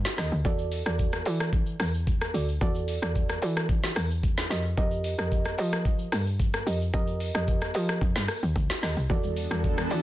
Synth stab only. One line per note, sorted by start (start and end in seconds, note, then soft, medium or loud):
0.18 0.30 G4 medium
0.18 0.30 A#4 medium
0.18 0.31 D#5 medium
0.45 0.83 F#4 medium
0.45 0.83 A4 medium
0.45 0.83 D5 loud
0.86 1.23 F#4 medium
0.86 1.23 A4 medium
0.86 1.23 D5 medium
1.26 1.51 F#4 medium
1.26 1.51 A4 medium
1.26 1.51 D5 medium
2.34 2.46 F#4 medium
2.34 2.47 A4 medium
2.34 2.47 D5 medium
2.61 2.99 F#4 loud
2.61 2.99 A4 medium
2.61 2.99 D5 loud
3.02 3.39 F#4 medium
3.02 3.39 A4 medium
3.02 3.39 D5 medium
3.42 3.67 F#4 medium
3.42 3.67 A4 medium
3.42 3.67 D5 medium
4.50 4.63 G4 medium
4.50 4.63 A#4 medium
4.50 4.63 D#5 medium
4.77 5.15 G4 loud
4.77 5.15 A#4 medium
4.77 5.15 D#5 loud
5.18 5.55 G4 medium
5.18 5.55 A#4 medium
5.18 5.55 D#5 medium
5.58 5.83 G4 medium
5.58 5.83 A#4 medium
5.58 5.84 D#5 medium
6.66 6.79 G4 medium
6.66 6.79 A#4 medium
6.66 6.79 D#5 medium
6.93 7.31 G4 medium
6.93 7.31 A#4 medium
6.93 7.31 D#5 loud
7.34 7.71 G4 medium
7.34 7.72 A#4 medium
7.34 7.72 D#5 medium
7.74 7.99 G4 medium
7.74 8.00 A#4 medium
7.74 8.00 D#5 medium
8.82 8.95 G4 medium
8.82 8.95 A#4 medium
8.82 8.95 D#5 medium
9.10 9.47 F#4 loud
9.10 9.48 A4 medium
9.10 9.48 D5 loud
9.51 9.88 F#4 medium
9.51 9.88 A4 medium
9.51 9.88 D5 medium
9.91 10.02 F#4 medium
9.91 10.02 A4 medium
9.91 10.02 D5 medium